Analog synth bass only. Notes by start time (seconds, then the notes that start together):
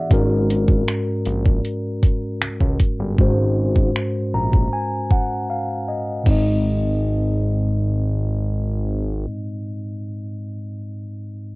0.11 G#1
1.26 A#1
2.42 C#2
2.61 C#2
3.00 G1
3.19 G#1
4.34 A#1
6.26 G#1